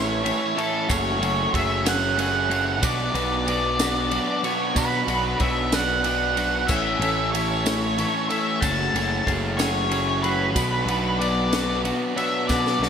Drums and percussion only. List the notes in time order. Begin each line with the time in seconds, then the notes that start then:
0.26 ride
0.58 ride
0.89 kick, ride, tambourine
1.23 ride
1.54 kick, ride
1.86 snare, ride, tambourine
2.19 ride
2.51 ride
2.83 kick, ride, tambourine
3.15 ride
3.48 ride
3.79 snare, ride, tambourine
4.11 ride
4.44 ride
4.76 kick, ride, tambourine
4.92 tambourine
5.08 ride, tambourine
5.40 kick, ride
5.72 snare, ride, tambourine
6.04 ride
6.37 ride
6.68 kick, crash, tambourine
7.02 ride
7.35 ride
7.66 snare, ride, tambourine
7.98 ride
8.30 ride
8.62 kick, ride, tambourine
8.96 ride
9.27 kick, ride
9.59 snare, ride, tambourine
9.91 ride
10.24 ride
10.56 kick, ride, tambourine
10.88 ride
11.21 ride
11.53 snare, ride, tambourine
11.85 ride
12.18 ride
12.49 kick, snare, tambourine
12.66 snare, tambourine
12.83 snare